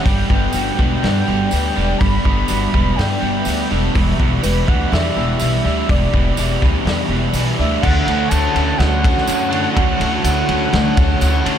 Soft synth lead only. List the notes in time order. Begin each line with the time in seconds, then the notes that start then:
0.04 G5
1.01 G5
1.98 B5
2.96 G5
4.43 B4
4.67 F#5
4.92 E5
5.65 E5
5.89 D5
7.60 E5
7.82 F#5
8.29 A5
8.78 F#5
9.75 F#5
10.25 F#5